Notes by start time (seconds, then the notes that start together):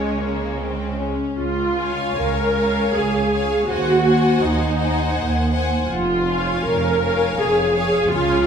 Already playing: C#2 C#3 G#3 C#4 C#5
0.20 A#3
0.59 C4
1.00 C#4
1.37 C#2 F4
1.78 C#5 F5 G#5
2.17 C#2 A#4
2.56 C#5 F5 G#5
2.94 C#2 G#4
3.31 C#5 F5 G#5
3.68 D#2 F#4 C5 F#5 G#5
4.06 C5 F#5 G#5
4.42 D#2 D#4
4.79 C5 F#5 G#5
5.16 D#2
5.52 C5 F#5 G#5
5.88 F1 F2 F4
6.26 C#5 F5 G#5
6.66 F1 F2 A#4
7.03 C#5 F5 G#5
7.39 F1 F2 G#4
7.74 C#5 F5 G#5
8.09 C#2 C#3 F4 C#5 F5 G#5